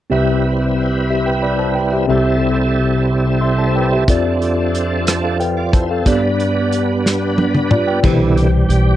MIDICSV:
0, 0, Header, 1, 5, 480
1, 0, Start_track
1, 0, Key_signature, 0, "major"
1, 0, Tempo, 659558
1, 88, Time_signature, 6, 3, 24, 8
1, 6524, End_track
2, 0, Start_track
2, 0, Title_t, "Tine electric piano"
2, 0, Program_c, 0, 4
2, 71, Note_on_c, 0, 60, 48
2, 76, Note_on_c, 0, 48, 46
2, 76, Note_on_c, 0, 67, 44
2, 77, Note_on_c, 0, 36, 46
2, 82, Note_on_c, 0, 71, 45
2, 84, Note_on_c, 0, 76, 52
2, 218, Control_c, 0, 64, 127
2, 788, Note_off_c, 0, 67, 0
2, 791, Note_off_c, 0, 71, 0
2, 792, Note_off_c, 0, 76, 0
2, 803, Note_on_c, 0, 76, 40
2, 806, Note_on_c, 0, 67, 35
2, 919, Note_on_c, 0, 79, 43
2, 920, Note_off_c, 0, 76, 0
2, 921, Note_off_c, 0, 67, 0
2, 924, Note_on_c, 0, 71, 37
2, 1035, Note_on_c, 0, 83, 47
2, 1037, Note_off_c, 0, 79, 0
2, 1037, Note_on_c, 0, 74, 39
2, 1040, Note_off_c, 0, 71, 0
2, 1155, Note_off_c, 0, 83, 0
2, 1156, Note_off_c, 0, 74, 0
2, 1156, Note_on_c, 0, 81, 44
2, 1161, Note_on_c, 0, 72, 36
2, 1273, Note_on_c, 0, 79, 44
2, 1276, Note_off_c, 0, 81, 0
2, 1278, Note_off_c, 0, 72, 0
2, 1279, Note_on_c, 0, 71, 36
2, 1394, Note_off_c, 0, 79, 0
2, 1398, Note_off_c, 0, 71, 0
2, 1401, Note_on_c, 0, 76, 40
2, 1407, Note_on_c, 0, 67, 34
2, 1491, Note_off_c, 0, 60, 0
2, 1493, Note_off_c, 0, 48, 0
2, 1494, Note_off_c, 0, 36, 0
2, 1507, Note_off_c, 0, 67, 0
2, 1511, Note_on_c, 0, 60, 50
2, 1515, Note_on_c, 0, 67, 46
2, 1516, Note_off_c, 0, 76, 0
2, 1516, Note_on_c, 0, 36, 50
2, 1520, Note_on_c, 0, 48, 49
2, 1522, Note_on_c, 0, 69, 43
2, 1525, Note_on_c, 0, 76, 57
2, 1539, Control_c, 0, 64, 0
2, 1650, Control_c, 0, 64, 127
2, 2463, Note_off_c, 0, 67, 0
2, 2466, Note_off_c, 0, 69, 0
2, 2468, Note_off_c, 0, 76, 0
2, 2482, Note_on_c, 0, 84, 44
2, 2488, Note_on_c, 0, 76, 34
2, 2599, Note_off_c, 0, 84, 0
2, 2602, Note_off_c, 0, 76, 0
2, 2609, Note_on_c, 0, 81, 47
2, 2613, Note_on_c, 0, 72, 40
2, 2723, Note_off_c, 0, 81, 0
2, 2725, Note_off_c, 0, 72, 0
2, 2734, Note_on_c, 0, 79, 47
2, 2741, Note_on_c, 0, 71, 38
2, 2846, Note_off_c, 0, 79, 0
2, 2849, Note_off_c, 0, 71, 0
2, 2854, Note_on_c, 0, 76, 46
2, 2859, Note_on_c, 0, 67, 40
2, 2931, Note_off_c, 0, 60, 0
2, 2934, Note_off_c, 0, 36, 0
2, 2936, Note_off_c, 0, 48, 0
2, 2969, Note_on_c, 0, 60, 50
2, 2971, Note_on_c, 0, 65, 46
2, 2978, Note_on_c, 0, 69, 47
2, 2979, Control_c, 0, 64, 0
2, 2979, Note_on_c, 0, 41, 53
2, 2984, Note_on_c, 0, 74, 58
2, 3080, Note_off_c, 0, 76, 0
2, 3082, Note_off_c, 0, 67, 0
2, 3087, Control_c, 0, 64, 127
2, 3679, Note_off_c, 0, 69, 0
2, 3682, Note_off_c, 0, 74, 0
2, 3811, Note_on_c, 0, 77, 43
2, 3818, Note_on_c, 0, 69, 36
2, 3924, Note_off_c, 0, 77, 0
2, 3928, Note_off_c, 0, 69, 0
2, 3929, Note_on_c, 0, 79, 50
2, 3933, Note_on_c, 0, 71, 42
2, 4157, Note_off_c, 0, 79, 0
2, 4159, Note_off_c, 0, 71, 0
2, 4172, Note_on_c, 0, 81, 45
2, 4178, Note_on_c, 0, 72, 39
2, 4285, Note_off_c, 0, 81, 0
2, 4288, Note_off_c, 0, 72, 0
2, 4299, Note_on_c, 0, 77, 44
2, 4302, Note_on_c, 0, 69, 38
2, 4381, Note_off_c, 0, 60, 0
2, 4382, Note_off_c, 0, 65, 0
2, 4385, Note_off_c, 0, 41, 0
2, 4408, Note_on_c, 0, 59, 52
2, 4414, Note_on_c, 0, 43, 49
2, 4414, Note_on_c, 0, 62, 45
2, 4416, Note_on_c, 0, 67, 49
2, 4419, Control_c, 0, 64, 0
2, 4422, Note_on_c, 0, 74, 60
2, 4522, Note_off_c, 0, 77, 0
2, 4524, Note_off_c, 0, 69, 0
2, 4568, Control_c, 0, 64, 127
2, 5353, Note_off_c, 0, 62, 0
2, 5353, Note_off_c, 0, 67, 0
2, 5357, Note_off_c, 0, 74, 0
2, 5374, Note_on_c, 0, 71, 48
2, 5378, Note_on_c, 0, 62, 39
2, 5600, Note_off_c, 0, 71, 0
2, 5602, Note_off_c, 0, 62, 0
2, 5610, Note_on_c, 0, 74, 47
2, 5616, Note_on_c, 0, 65, 44
2, 5724, Note_off_c, 0, 74, 0
2, 5727, Note_off_c, 0, 65, 0
2, 5731, Note_on_c, 0, 79, 51
2, 5732, Note_on_c, 0, 71, 40
2, 5820, Note_off_c, 0, 59, 0
2, 5823, Note_off_c, 0, 43, 0
2, 5843, Note_on_c, 0, 47, 49
2, 5852, Note_on_c, 0, 64, 46
2, 5853, Note_on_c, 0, 52, 47
2, 5854, Note_on_c, 0, 67, 48
2, 5857, Note_on_c, 0, 72, 55
2, 5858, Control_c, 0, 64, 0
2, 5958, Note_off_c, 0, 79, 0
2, 5959, Note_off_c, 0, 71, 0
2, 5969, Control_c, 0, 64, 127
2, 6524, Note_off_c, 0, 47, 0
2, 6524, Note_off_c, 0, 52, 0
2, 6524, Note_off_c, 0, 64, 0
2, 6524, Note_off_c, 0, 67, 0
2, 6524, Note_off_c, 0, 72, 0
2, 6524, End_track
3, 0, Start_track
3, 0, Title_t, "Tonewheel organ"
3, 0, Program_c, 1, 16
3, 83, Note_on_c, 1, 60, 40
3, 84, Note_on_c, 1, 64, 44
3, 84, Note_on_c, 1, 71, 50
3, 86, Note_on_c, 1, 55, 42
3, 1497, Note_off_c, 1, 60, 0
3, 1497, Note_off_c, 1, 64, 0
3, 1497, Note_off_c, 1, 71, 0
3, 1499, Note_off_c, 1, 55, 0
3, 1526, Note_on_c, 1, 64, 43
3, 1528, Note_on_c, 1, 69, 54
3, 1530, Note_on_c, 1, 60, 46
3, 1532, Note_on_c, 1, 48, 45
3, 1532, Note_on_c, 1, 55, 40
3, 2939, Note_off_c, 1, 64, 0
3, 2940, Note_off_c, 1, 69, 0
3, 2941, Note_off_c, 1, 60, 0
3, 2942, Note_off_c, 1, 48, 0
3, 2942, Note_off_c, 1, 55, 0
3, 2974, Note_on_c, 1, 62, 42
3, 2975, Note_on_c, 1, 60, 42
3, 2978, Note_on_c, 1, 53, 48
3, 2979, Note_on_c, 1, 69, 54
3, 3913, Note_off_c, 1, 60, 0
3, 3913, Note_off_c, 1, 62, 0
3, 3915, Note_off_c, 1, 69, 0
3, 4053, Note_on_c, 1, 74, 49
3, 4057, Note_on_c, 1, 65, 40
3, 4165, Note_off_c, 1, 74, 0
3, 4167, Note_off_c, 1, 65, 0
3, 4175, Note_on_c, 1, 72, 49
3, 4180, Note_on_c, 1, 64, 45
3, 4286, Note_off_c, 1, 72, 0
3, 4289, Note_off_c, 1, 64, 0
3, 4291, Note_on_c, 1, 69, 43
3, 4299, Note_on_c, 1, 60, 36
3, 4385, Note_off_c, 1, 53, 0
3, 4407, Note_on_c, 1, 59, 42
3, 4410, Note_on_c, 1, 55, 45
3, 4411, Note_on_c, 1, 71, 51
3, 4412, Note_on_c, 1, 62, 46
3, 4519, Note_off_c, 1, 69, 0
3, 4523, Note_off_c, 1, 60, 0
3, 5820, Note_off_c, 1, 59, 0
3, 5821, Note_off_c, 1, 55, 0
3, 5821, Note_off_c, 1, 71, 0
3, 5822, Note_off_c, 1, 62, 0
3, 5842, Note_on_c, 1, 50, 40
3, 5846, Note_on_c, 1, 64, 61
3, 5849, Note_on_c, 1, 52, 34
3, 5854, Note_on_c, 1, 47, 45
3, 5854, Note_on_c, 1, 55, 41
3, 6083, Note_on_c, 1, 67, 65
3, 6095, Note_off_c, 1, 64, 0
3, 6165, Note_off_c, 1, 50, 0
3, 6168, Note_off_c, 1, 52, 0
3, 6171, Note_off_c, 1, 47, 0
3, 6192, Note_off_c, 1, 67, 0
3, 6321, Note_on_c, 1, 67, 67
3, 6524, Note_off_c, 1, 55, 0
3, 6524, Note_off_c, 1, 67, 0
3, 6524, End_track
4, 0, Start_track
4, 0, Title_t, "Upright bass"
4, 0, Program_c, 2, 32
4, 5850, Note_on_c, 2, 36, 72
4, 6301, Note_off_c, 2, 36, 0
4, 6324, Note_on_c, 2, 35, 69
4, 6524, Note_off_c, 2, 35, 0
4, 6524, End_track
5, 0, Start_track
5, 0, Title_t, "Drums"
5, 2970, Note_on_c, 9, 36, 79
5, 2972, Note_on_c, 9, 42, 55
5, 3042, Note_off_c, 9, 36, 0
5, 3044, Note_off_c, 9, 42, 0
5, 3216, Note_on_c, 9, 42, 34
5, 3288, Note_off_c, 9, 42, 0
5, 3454, Note_on_c, 9, 42, 38
5, 3527, Note_off_c, 9, 42, 0
5, 3690, Note_on_c, 9, 42, 63
5, 3698, Note_on_c, 9, 37, 74
5, 3763, Note_off_c, 9, 42, 0
5, 3771, Note_off_c, 9, 37, 0
5, 3933, Note_on_c, 9, 42, 39
5, 4006, Note_off_c, 9, 42, 0
5, 4172, Note_on_c, 9, 36, 76
5, 4176, Note_on_c, 9, 42, 36
5, 4245, Note_off_c, 9, 36, 0
5, 4249, Note_off_c, 9, 42, 0
5, 4410, Note_on_c, 9, 36, 83
5, 4411, Note_on_c, 9, 42, 57
5, 4483, Note_off_c, 9, 36, 0
5, 4484, Note_off_c, 9, 42, 0
5, 4656, Note_on_c, 9, 42, 37
5, 4729, Note_off_c, 9, 42, 0
5, 4893, Note_on_c, 9, 42, 39
5, 4966, Note_off_c, 9, 42, 0
5, 5138, Note_on_c, 9, 38, 35
5, 5211, Note_off_c, 9, 38, 0
5, 5371, Note_on_c, 9, 48, 49
5, 5443, Note_off_c, 9, 48, 0
5, 5491, Note_on_c, 9, 47, 49
5, 5563, Note_off_c, 9, 47, 0
5, 5610, Note_on_c, 9, 45, 71
5, 5682, Note_off_c, 9, 45, 0
5, 5848, Note_on_c, 9, 49, 66
5, 5849, Note_on_c, 9, 36, 88
5, 5921, Note_off_c, 9, 49, 0
5, 5922, Note_off_c, 9, 36, 0
5, 6094, Note_on_c, 9, 42, 40
5, 6167, Note_off_c, 9, 42, 0
5, 6331, Note_on_c, 9, 42, 44
5, 6404, Note_off_c, 9, 42, 0
5, 6524, End_track
0, 0, End_of_file